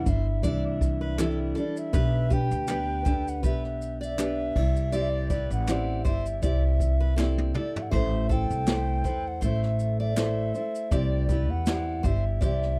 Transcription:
Already playing: F#5
0.04 G1 G3 D4 E4 C5, kick, shaker
0.09 E5
0.42 C2 E3 G3 D4 E4 D5 E5, kick, shaker
0.81 kick, shaker
1.01 B4
1.18 C3 E3 G3 D4 E4 A4, cross-stick, clap, shaker
1.55 G3 D4 E4 A4 D5, shaker
1.77 E5, shaker
1.93 B1 B3 D4 G4 B4, kick, shaker
2.30 D4 G4 B4 G5, kick, shaker
2.51 D2, shaker
2.67 B3 D4 G4 B4, cross-stick, clap, shaker
3.04 D2 D4 G4 A4 B4, kick, shaker
3.28 F#5, shaker
3.43 B1 B3 D4 G4 B4 E5, kick, shaker
3.64 cross-stick
3.82 shaker
4.01 D5 E5, shaker
4.18 B3 D4 G4 B4, cross-stick, clap, shaker
4.56 C2 E4 G4 D5, kick, crash
4.76 shaker
4.92 C4 E4 G4 D5, shaker
5.01 E5
5.09 D5
5.30 E4 G4 B4 D5, kick, shaker
5.51 A1 F#5, shaker
5.67 C4 E4 G4 D5, cross-stick, clap, shaker
6.04 G1 E4 G4 C5 D5 E5, kick, shaker
6.26 shaker
6.42 C2 C4 E4 G4 D5 E5, kick, shaker
6.80 kick, shaker
7.00 B4
7.16 C4 E4 G4 A4 D5, snare, clap
7.38 high tom
7.54 E4 G4 A4 D5, mid tom
7.76 E5, floor tom
7.82 F#5
7.89 A1 A3 E4 C5 E5, kick, splash
7.94 A4 C5
8.29 E4 A4 C5 G5, kick, shaker
8.50 C2, shaker
8.67 A3 E4 A4 C5, snare, clap, shaker
9.04 E2 E4 A4 B4 C5, kick, shaker
9.27 F#5
9.41 A1 A3 E4 A4 C5 E5, kick, shaker
9.63 snare
9.79 shaker
10.00 D5 E5
10.16 A3 E4 A4 C5, snare, clap, shaker
10.54 E4 A4 C5, shaker
10.75 shaker
10.91 C2 C4 E4 G4 D5 E5, kick, shaker
10.96 D5
11.29 E4 G4 B4 D5, kick, shaker
11.50 E2 F#5
11.66 C4 E4 G4 D5, snare, clap, shaker
12.03 G1 E4 G4 C5 D5 E5, kick, shaker
12.41 C2 C4 E4 G4 D5 E5, kick, shaker
12.62 snare

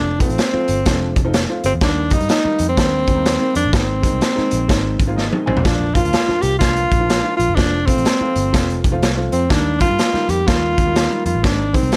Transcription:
Already playing: F1 D4 F4
0.19 F3 A3 C4 D#4, kick, closed hi-hat
0.29 A1, closed hi-hat
0.38 snare, closed hi-hat
0.53 F3 A3 C4 F4, muted picked electric bass stroke
0.68 G1, closed hi-hat
0.86 F1 F3 A3 C4 D4, kick, snare, closed hi-hat
1.16 F1, kick, closed hi-hat
1.25 F3 A3 C4 D#4
1.34 snare, closed hi-hat
1.49 F3 A3 C4 F4
1.64 G1 C4, closed hi-hat
1.74 E2
1.81 D#2 D#3 G3 A#3 D4 D#4, kick, snare, closed hi-hat
2.10 D#3 G3 A#3 D#4, kick, closed hi-hat
2.20 G2, closed hi-hat
2.29 D#4, snare, closed hi-hat
2.44 D#3 G3 A#3 D#4, muted picked electric bass stroke
2.59 F2, closed hi-hat
2.69 C4
2.77 D#2 D#3 G3 A#3 D4, kick, snare, closed hi-hat
3.07 D#2, kick, closed hi-hat
3.15 D#3 G3 A#3 D#4
3.25 snare, closed hi-hat
3.39 D#3 G3 A#3 C4
3.55 F2 D4, closed hi-hat
3.65 A1
3.72 G#1 D#3 G#3 C4 D#4, kick, snare, closed hi-hat
4.02 D#3 G#3 C4 D#4, kick, closed hi-hat
4.13 C2
4.21 snare, closed hi-hat
4.35 D#3 G#3 C4 D#4, muted picked electric bass stroke, snare
4.51 A#1, closed hi-hat
4.68 G#1 D#3 G#3 C4 D#4, kick, snare, closed hi-hat
4.99 G#1, kick, closed hi-hat
5.07 D#3 G#3 C4 F4
5.16 D#5, snare
5.30 D#3 G#3 C4 D#4, high tom
5.46 A#1 C4 G#5, mid tom
5.56 B1, floor tom
5.64 A#1 F3 A#3 D4 F4, kick, snare, closed hi-hat
5.94 F3 A#3 D4 F4, kick, closed hi-hat
6.05 D2, closed hi-hat
6.13 snare, closed hi-hat
6.27 F3 A#3 D4 F4, muted picked electric bass stroke, snare
6.41 C2 G4, closed hi-hat
6.59 F3 A#3 D4 F4, kick, snare, closed hi-hat
6.76 closed hi-hat
6.92 A#1, kick, closed hi-hat
6.99 F3 A#3 D4 F4
7.10 snare, closed hi-hat
7.23 F3 A#3 D4 F4
7.37 A#1 F4, closed hi-hat
7.49 F#1
7.55 F1 F3 A3 C4 D4 F4, kick, snare, closed hi-hat
7.86 F3 A3 C4 F4, kick, closed hi-hat
7.97 A1, closed hi-hat
8.05 snare, closed hi-hat
8.20 F3 A3 C4 F4, muted picked electric bass stroke
8.36 G1, closed hi-hat
8.52 F1 F3 A3 C4 F4, kick, snare, closed hi-hat
8.70 closed hi-hat
8.84 F1, kick, closed hi-hat
8.91 F3 A3 C4 F4
9.02 C2, snare, closed hi-hat
9.16 F3 A3 C4 F4
9.32 F2 C4, closed hi-hat
9.49 D#2 D#3 G3 A#3 D4 D#4, kick, snare, closed hi-hat
9.79 D#3 G3 A#3 D4 F4, kick, closed hi-hat
9.91 G2
9.99 snare, closed hi-hat
10.13 D#3 G3 A#3 D#4, muted picked electric bass stroke, snare
10.29 F2 G4, closed hi-hat
10.46 D#2 D#3 G3 A#3 D#4 F4, kick, snare, closed hi-hat
10.78 D#2, kick, closed hi-hat
10.86 D#3 G3 A#3 D#4
10.96 snare, closed hi-hat
11.09 D#3 G3 A#3 D#4
11.26 F2 F4, closed hi-hat
11.35 A1
11.42 D#3 G#3 C4 D4 D#4, kick, snare, closed hi-hat
11.73 D#3 G#3 C4 D#4, kick, closed hi-hat
11.83 C2, closed hi-hat
11.92 snare, closed hi-hat

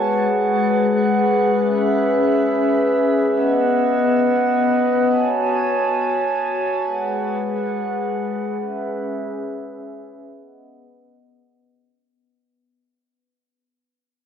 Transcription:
Already playing: G#3 G#4 B4 F#5
1.58 C#4 E5
3.33 B3 D#5 F#5
5.09 F#4 C#5 G#5 A5
6.84 G#3 G#4 B4 F#5
8.59 C#4 G#4 E5
10.34 B3 D#5 F#5

